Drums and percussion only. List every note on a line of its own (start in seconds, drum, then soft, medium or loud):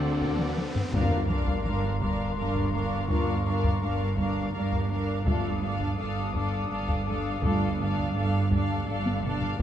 0.21 taiko medium
0.39 taiko mid medium
0.58 taiko mid medium
0.75 taiko low medium
0.94 taiko medium
1.29 taiko mid soft
1.47 taiko medium
1.66 taiko mid soft
1.83 taiko mid soft
2.01 taiko medium
2.55 taiko medium
2.73 taiko mid soft
3.09 taiko medium
3.64 taiko medium
4.18 taiko medium
4.72 taiko medium
5.26 taiko medium
5.81 taiko medium
6.34 taiko medium
6.89 taiko medium
7.43 taiko medium
7.97 taiko medium
8.51 taiko medium
9.06 taiko high medium
9.23 taiko low-mid medium
9.41 taiko low medium